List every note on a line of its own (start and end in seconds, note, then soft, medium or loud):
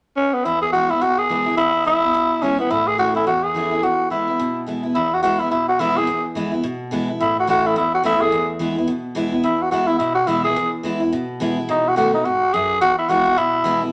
0.17 0.35 C#4 loud
0.33 0.46 B3 medium
0.45 0.99 E2 medium
0.45 0.61 E4 loud
0.62 0.72 G#4 loud
0.73 0.89 E3 medium
0.73 0.90 G#3 medium
0.73 0.90 B3 medium
0.73 0.88 E4 medium
0.73 0.92 F#4 loud
0.90 1.02 B3 soft
0.90 1.01 E4 medium
0.90 1.03 E4 medium
1.01 1.55 B2 medium
1.01 1.20 F#4 loud
1.19 1.57 G#4 loud
1.29 1.46 E3 medium
1.29 1.46 G#3 medium
1.29 1.47 B3 medium
1.29 1.45 E4 medium
1.46 1.58 B3 soft
1.46 1.57 E4 medium
1.57 2.12 E2 medium
1.57 1.84 E4 loud
1.85 2.01 E3 medium
1.85 2.02 G#3 medium
1.85 2.02 B3 medium
1.85 2.44 E4 loud
1.85 2.01 E4 medium
2.02 2.14 B3 soft
2.02 2.13 E4 medium
2.14 2.68 B2 medium
2.42 2.58 E3 medium
2.42 2.59 G#3 medium
2.42 2.59 B3 medium
2.42 2.59 C#4 medium
2.42 2.57 E4 medium
2.58 2.72 B3 medium
2.58 2.71 B3 soft
2.58 2.70 E4 medium
2.71 3.24 A2 medium
2.71 2.89 E4 loud
2.87 2.99 G#4 loud
2.98 3.14 E3 medium
2.98 3.15 A3 medium
2.98 3.15 C#4 medium
2.98 3.13 E4 medium
2.98 3.14 F#4 medium
3.15 3.27 C#4 soft
3.15 3.26 E4 medium
3.27 3.81 E2 medium
3.27 3.45 F#4 medium
3.44 3.85 G#4 medium
3.55 3.71 E3 medium
3.55 3.71 A3 medium
3.55 3.71 C#4 medium
3.55 3.70 E4 medium
3.71 3.83 C#4 soft
3.71 3.82 E4 medium
3.83 4.37 E2 medium
3.83 4.10 F#4 loud
4.10 4.27 E3 medium
4.10 4.27 G#3 medium
4.10 4.28 B3 medium
4.10 4.63 E4 medium
4.10 4.26 E4 medium
4.28 4.40 B3 soft
4.28 4.39 E4 medium
4.40 4.93 B2 medium
4.66 4.83 E3 medium
4.66 4.83 G#3 medium
4.66 4.84 B3 medium
4.66 4.82 E4 medium
4.83 4.96 B3 soft
4.83 4.95 E4 medium
4.95 5.49 E2 medium
4.95 5.16 E4 medium
5.14 5.22 F#4 medium
5.23 5.39 E3 medium
5.23 5.39 G#3 medium
5.23 5.40 B3 medium
5.23 5.38 E4 medium
5.23 5.41 F#4 medium
5.39 5.52 B3 medium
5.39 5.51 E4 medium
5.51 6.05 B2 medium
5.51 5.67 E4 medium
5.68 5.82 F#4 medium
5.79 5.95 E3 medium
5.79 5.96 G#3 medium
5.79 5.96 B3 medium
5.79 5.99 E4 medium
5.79 5.95 E4 loud
5.96 6.08 B3 soft
5.96 6.07 E4 medium
5.96 6.25 G#4 loud
6.07 6.61 E2 medium
6.35 6.52 E3 medium
6.35 6.52 G#3 medium
6.35 6.52 B3 medium
6.35 6.50 E4 medium
6.52 6.64 B3 medium
6.52 6.63 E4 medium
6.63 7.18 B2 medium
6.91 7.08 E3 loud
6.91 7.08 G#3 medium
6.91 7.08 B3 medium
6.91 7.07 E4 medium
7.08 7.20 B3 soft
7.08 7.19 E4 medium
7.20 7.74 A2 medium
7.20 7.38 E4 medium
7.40 7.48 F#4 medium
7.47 7.75 E3 medium
7.47 7.75 A3 medium
7.47 7.75 C#4 medium
7.47 7.76 E4 loud
7.47 7.68 F#4 loud
7.67 7.77 E4 medium
7.76 8.30 E2 medium
7.76 7.92 E4 medium
7.94 8.04 F#4 medium
8.03 8.20 E3 medium
8.03 8.20 A3 medium
8.03 8.21 C#4 loud
8.03 8.19 E4 loud
8.03 8.23 E4 medium
8.20 8.32 C#4 soft
8.20 8.31 E4 medium
8.20 8.49 G#4 loud
8.32 8.86 E2 medium
8.59 8.76 E3 medium
8.59 8.76 G#3 medium
8.59 8.77 B3 medium
8.59 8.75 E4 loud
8.76 8.89 B3 medium
8.76 8.87 E4 medium
8.87 9.42 B2 medium
9.15 9.32 E3 medium
9.15 9.32 G#3 medium
9.15 9.32 B3 medium
9.15 9.31 E4 medium
9.32 9.44 B3 soft
9.32 9.43 E4 medium
9.44 9.98 E2 medium
9.44 9.64 E4 medium
9.62 9.71 F#4 medium
9.71 9.88 E3 medium
9.71 9.88 G#3 medium
9.71 9.89 B3 medium
9.71 9.86 E4 medium
9.71 9.88 F#4 medium
9.87 10.00 B3 soft
9.87 9.98 E4 medium
9.87 9.99 E4 medium
9.98 10.54 B2 medium
9.98 10.14 E4 medium
10.15 10.29 F#4 medium
10.27 10.44 E3 medium
10.27 10.44 G#3 medium
10.27 10.45 B3 medium
10.27 10.44 E4 medium
10.27 10.43 E4 medium
10.44 10.57 B3 soft
10.44 10.55 E4 medium
10.44 10.71 G#4 loud
10.56 11.10 E2 medium
10.83 11.00 E3 medium
10.83 11.01 G#3 medium
10.83 11.01 B3 medium
10.83 10.99 E4 medium
11.00 11.13 B3 soft
11.00 11.12 E4 medium
11.13 11.66 B2 medium
11.40 11.56 E3 loud
11.40 11.57 G#3 medium
11.40 11.57 B3 loud
11.40 11.56 E4 loud
11.57 11.69 B3 soft
11.57 11.68 E4 medium
11.69 12.23 B2 medium
11.69 11.90 D#4 medium
11.89 11.97 F#4 medium
11.96 12.12 D#3 medium
11.96 12.13 A3 medium
11.96 12.13 B3 medium
11.96 12.13 F#4 loud
11.96 12.12 F#4 medium
12.13 12.25 B3 soft
12.13 12.27 D#4 medium
12.13 12.24 F#4 medium
12.25 12.52 G#2 medium
12.25 12.55 F#4 loud
12.54 12.80 F#2 medium
12.54 12.80 G#4 loud
12.81 13.35 E2 medium
12.81 12.97 F#4 loud
12.99 13.11 E4 medium
13.09 13.25 E3 medium
13.09 13.25 G#3 medium
13.09 13.26 B3 loud
13.09 13.24 E4 medium
13.09 13.39 F#4 loud
13.26 13.37 E4 medium
13.38 13.91 B2 medium
13.38 13.82 E4 medium
13.64 13.81 E3 medium
13.64 13.81 G#3 medium
13.64 13.81 B3 medium
13.64 13.80 E4 loud
13.81 13.92 B3 soft
13.81 13.92 E4 medium